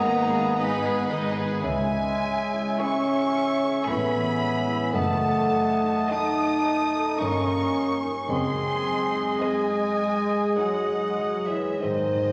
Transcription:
Already playing: double bass section G#1, cello section G#2, harp G#2 D#3 B3 D#4 B4, french horn section A#3, bassoon B3, cor anglais D#5, flute F#5, violin section A#5
0.05 viola section G#3 D#4, violin section B4 D#5
0.11 harp D#5
0.29 violin section G#4 B4
0.34 viola section B3, harp B4
0.57 viola section G#3 D#4, french horn section B3, harp D#4, violin section B4 D#5 B5, flute G#5
0.84 viola section B3, harp B3, violin section G#4 B4
1.09 harp D#3, viola section G#3 D#4, violin section B4 D#5
1.34 viola section B3, harp B3, violin section G#4 B4
1.63 double bass section C#2, timpani C#3, cello section C#3, harp C#3, french horn section G#3, bassoon C#4, cor anglais E5, flute E5, violin section G#5
1.93 harp C#4
2.24 harp G#3
2.53 harp E4
2.80 viola section G#3 E4, french horn section C#4, violin section G#4 C#5 C#6, harp C#5, flute G#5
3.10 harp G#4
3.37 harp E5
3.63 harp G#4
3.85 double bass section A1, cello section A2, harp A2, viola section A3, violin section G#4 C#5 B5, flute G#5
3.90 french horn section B3, viola section E4
4.15 harp E3
4.40 harp G#3
4.67 harp E4
4.92 double bass section F#1, harp F#2, cello section F#2, bassoon A3, french horn section A3, cor anglais D#5, flute F#5, violin section A5
5.22 harp F#3
5.52 harp A3
5.83 harp D#4
6.08 viola section A3, french horn section D#4, violin section F#4 D#5, flute A5
6.12 viola section D#4, harp D#5, violin section D#6
6.40 harp A4
6.67 harp D#5
6.93 harp A4
7.19 double bass section G1, harp G2, cello section G2, bassoon A#3, viola section A#3 D#4, french horn section C#4, violin section D#4 D#5 C#6, flute A#5
7.47 harp G3
7.74 harp A#3
8.03 harp D#4
8.28 double bass section F#1, harp F#2, cello section F#2, bassoon G#3, french horn section C4, cor anglais D#5, flute G#5, violin section C6
8.58 harp F#3
8.86 harp G#3
9.13 harp D#4
9.40 french horn section G#3, viola section G#3 D#4, violin section G#4 D#5 G#5, flute D#5, harp D#5
9.70 harp G#4
9.99 harp D#5
10.27 harp G#4
10.56 french horn section F#3, viola section G#3 D#4, harp D#4, violin section G#4 D#5 F#5, flute D#5
10.88 harp G#3
11.19 harp F#3
11.48 french horn section E3, harp G#3, flute C#5, violin section E5
11.79 double bass section G#1, cello section G#2, timpani G#2, harp G#2, french horn section D#3, bassoon G#3, flute C5, violin section D#5
11.84 cor anglais C5
11.91 timpani G#2
12.17 timpani G#2, harp D#3
12.28 timpani G#2

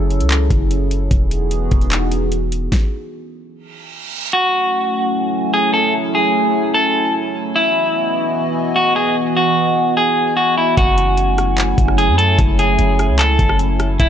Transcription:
Already playing: 808-style bass F#1, analog synth pad F#3 C#4 E4 G#4 A4
0.10 closed hi-hat
0.20 808-style bass C#2, closed hi-hat
0.30 clap, closed hi-hat
0.50 808-style bass F#1, kick, closed hi-hat
0.71 closed hi-hat
0.91 closed hi-hat
1.11 808-style bass E1, analog synth pad E3 B3 D#4 F#4 G#4, kick, closed hi-hat
1.31 closed hi-hat
1.51 closed hi-hat
1.71 808-style bass E1, kick, closed hi-hat
1.81 closed hi-hat
1.91 clap, closed hi-hat
2.12 closed hi-hat
2.32 closed hi-hat
2.52 closed hi-hat
2.72 kick, snare
3.53 reverse cymbal
4.33 analog synth pad F#3 A3 C#4 E4 G#5, clean electric guitar F#4
5.54 clean electric guitar G#4
5.74 clean electric guitar A4
6.15 clean electric guitar G#4
6.74 clean electric guitar A4
7.55 analog synth pad E3 B3 F#4 D#5 G#5, clean electric guitar E4
8.76 clean electric guitar F#4
8.96 clean electric guitar G#4
9.37 clean electric guitar F#4
9.97 clean electric guitar G#4
10.37 clean electric guitar F#4
10.58 clean electric guitar E4
10.77 808-style bass F#1, analog synth pad F#3 A3 C#4 E4, clean electric guitar F#4, kick, closed hi-hat
10.98 closed hi-hat
11.17 closed hi-hat
11.38 cross-stick, closed hi-hat
11.58 clap, closed hi-hat
11.78 808-style bass F#1, kick, closed hi-hat
11.88 cross-stick
11.98 clean electric guitar G#4, closed hi-hat
12.08 808-style bass F#2
12.18 clean electric guitar A4, closed hi-hat
12.39 808-style bass F#1, kick, closed hi-hat
12.59 clean electric guitar G#4, closed hi-hat
12.79 808-style bass F#1, closed hi-hat
12.99 cross-stick, closed hi-hat
13.09 808-style bass C#2
13.19 clean electric guitar A4, clap, closed hi-hat
13.39 808-style bass F#1, kick, closed hi-hat
13.49 cross-stick
13.59 closed hi-hat
13.80 cross-stick, closed hi-hat
14.00 808-style bass E1, analog synth pad E3 B3 F#4 G#4 D#5, clean electric guitar E4, kick, closed hi-hat

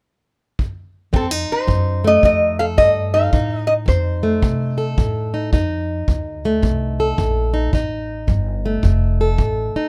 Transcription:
0.59 kick
1.13 steel-string acoustic guitar F2 C4, upright bass F2, resonator guitar played with a steel bar A4, kick
1.31 steel-string acoustic guitar D#4
1.50 resonator guitar played with a steel bar C5, muted upright bass stroke
1.67 steel-string acoustic guitar F2, upright bass F#2, kick
2.04 steel-string acoustic guitar A3, resonator guitar played with a steel bar D#5
2.23 upright bass F2, steel-string acoustic guitar F2, resonator guitar played with a steel bar D#5, kick
2.59 steel-string acoustic guitar A4, resonator guitar played with a steel bar F5
2.77 steel-string acoustic guitar F2, upright bass G2, resonator guitar played with a steel bar D#5, kick
3.14 steel-string acoustic guitar D#4, resonator guitar played with a steel bar F5
3.33 steel-string acoustic guitar F2 D#4, upright bass A2, kick
3.67 resonator guitar played with a steel bar D#5
3.86 steel-string acoustic guitar F2, upright bass F2, resonator guitar played with a steel bar C5, kick
4.23 steel-string acoustic guitar A3
4.42 steel-string acoustic guitar F2, upright bass C3, kick
4.78 steel-string acoustic guitar A4
4.98 steel-string acoustic guitar F2, upright bass A2, kick
5.34 steel-string acoustic guitar D#4
5.53 steel-string acoustic guitar F2 D#4, upright bass F2, kick
6.08 upright bass D2, steel-string acoustic guitar F2, kick
6.45 steel-string acoustic guitar A3
6.62 upright bass C2, steel-string acoustic guitar F2, kick
7.00 steel-string acoustic guitar A4
7.18 upright bass A#1, steel-string acoustic guitar F2, kick
7.54 steel-string acoustic guitar D#4
7.73 upright bass A1, steel-string acoustic guitar F2 D#4, kick
8.27 upright bass G1, steel-string acoustic guitar F2, kick
8.66 steel-string acoustic guitar A3
8.83 upright bass F1, steel-string acoustic guitar F2, kick
9.21 steel-string acoustic guitar A4
9.38 upright bass A1, steel-string acoustic guitar F2, kick
9.75 steel-string acoustic guitar D#4, muted upright bass stroke

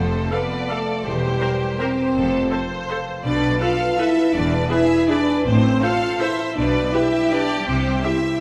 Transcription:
Already playing: double bass section F1, cello section F2, harp F2 C4 F4 A4 C5 F5 A5, french horn section A3, violin section A4 C5
0.05 harp C3
0.14 harp C4
0.23 harp F4
0.32 french horn section B3, viola section A4 F5, harp A4, violin section B4 D5
0.42 harp C5
0.51 harp F5
0.61 harp A5
0.70 french horn section A3, violin section A4, viola section A4 F5, harp F5
0.79 harp C5
0.88 harp A4
0.97 harp F4
1.05 double bass section E1, cello section E2, harp E2, french horn section G3, violin section G4 C5
1.14 harp E3
1.22 harp C4
1.31 harp G4
1.41 harp A#4, viola section A#4 C5
1.50 harp C5
1.60 harp G5
1.71 harp A#5
1.80 french horn section C4, violin section G4 C5, viola section A#4 C5, harp G5
1.90 harp C5
1.99 harp A#4
2.08 harp G4
2.16 double bass section F1, harp F2, cello section F2, violin section A4
2.25 harp C3
2.34 harp C4
2.43 harp F4
2.51 viola section A4 C5, harp A4, violin section C5
2.62 harp C5
2.71 harp F5
2.80 harp A5
2.90 viola section A4 C5, harp F5
2.99 harp C5
3.08 harp A4
3.16 harp F4
3.24 double bass section B1, cello section B2, harp B2, french horn section D4, violin section B4 D5
3.33 harp A3
3.42 harp B3
3.51 harp F4
3.60 french horn section F4, violin section A4 F5, harp A4, viola section A4 B4
3.70 harp B4
3.80 harp F5
3.89 harp A5
3.98 french horn section E4, violin section A4 E5, viola section A4 B4, harp F5
4.07 harp B4
4.16 harp A4
4.25 harp F4
4.33 double bass section E1, cello section E2, harp E3, french horn section D4, violin section B4 D5
4.42 harp B3
4.51 harp E4
4.61 harp G#4
4.70 french horn section E4, violin section G#4 E5, viola section G#4 B4, harp B4
4.80 harp E5
4.89 harp G#5
4.99 harp B5
5.09 french horn section D4, viola section G#4 B4, violin section B4 D5, harp G#5
5.18 harp E5
5.27 harp B4
5.36 harp G#4
5.45 double bass section A1, harp A2, cello section A2, french horn section C4, violin section C5
5.54 harp E3
5.73 harp E4
5.82 french horn section F4, viola section A4 C5, violin section A4 F5, harp A4
5.92 harp C5
6.02 harp E5
6.12 harp A5
6.20 french horn section E4, viola section A4 C5, violin section C5 E5, harp E5
6.30 harp C5
6.40 harp A4
6.48 harp E4
6.56 double bass section B1, cello section B2, harp B2, french horn section D4, violin section B4 D5
6.66 harp B3
6.75 harp G3
6.84 harp D4
6.93 french horn section E4, violin section G4 E5, harp G4, viola section G4 B4
7.04 harp D4
7.13 harp D5
7.23 harp G5
7.32 french horn section D4, viola section G4 B4, violin section D5, harp D5
7.42 harp G4
7.50 harp D4
7.59 harp G3
7.67 double bass section C2, cello section C3, harp C3, french horn section C4, violin section C5
7.77 harp C4
7.86 harp G3
7.95 harp E4
8.04 french horn section E4, viola section G4 E5, harp C5, violin section E5
8.14 harp G4
8.23 harp E5
8.33 harp C6

